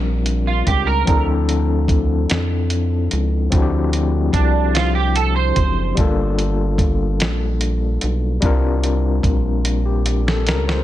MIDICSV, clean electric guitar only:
0, 0, Header, 1, 2, 480
1, 0, Start_track
1, 0, Key_signature, -1, "minor"
1, 0, Tempo, 816327
1, 633, Time_signature, 6, 3, 24, 8
1, 6372, End_track
2, 0, Start_track
2, 0, Title_t, "Clean electric guitar"
2, 0, Program_c, 0, 27
2, 278, Note_on_c, 0, 65, 71
2, 390, Note_off_c, 0, 65, 0
2, 397, Note_on_c, 0, 67, 85
2, 509, Note_off_c, 0, 67, 0
2, 510, Note_on_c, 0, 70, 73
2, 740, Note_off_c, 0, 70, 0
2, 2550, Note_on_c, 0, 62, 72
2, 2780, Note_off_c, 0, 62, 0
2, 2791, Note_on_c, 0, 65, 88
2, 2906, Note_off_c, 0, 65, 0
2, 2911, Note_on_c, 0, 67, 87
2, 3026, Note_off_c, 0, 67, 0
2, 3033, Note_on_c, 0, 69, 79
2, 3147, Note_off_c, 0, 69, 0
2, 3151, Note_on_c, 0, 72, 76
2, 3494, Note_off_c, 0, 72, 0
2, 6372, End_track
0, 0, End_of_file